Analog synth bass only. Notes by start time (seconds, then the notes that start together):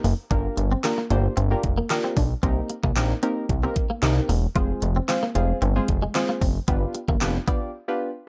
0.04 F#1
0.31 G1
0.57 G1
1.10 G1
1.37 G1
1.64 F1
2.17 B1
2.43 C2
2.83 C2
2.96 A#1
3.49 C2
4.03 C2
4.29 E1
4.56 F1
4.82 F1
5.35 F1
5.62 G1
5.89 F1
6.42 F#1
6.68 G1
7.08 G1
7.21 F1